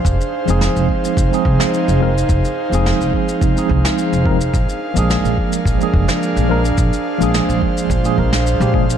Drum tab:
SH |xx-xxx-xxx-xxx-x|xx-xxx-xxx-xxx-x|xx-xxx-xxx-xxx-x|xx-xxx-xxx-xxx-x|
SD |----o------o----|----o------o----|----o------o----|----o------o----|
BD |o-----o-o-o-----|o-----o-o-o---o-|o-----o-o-o-----|o-----o-o-o---o-|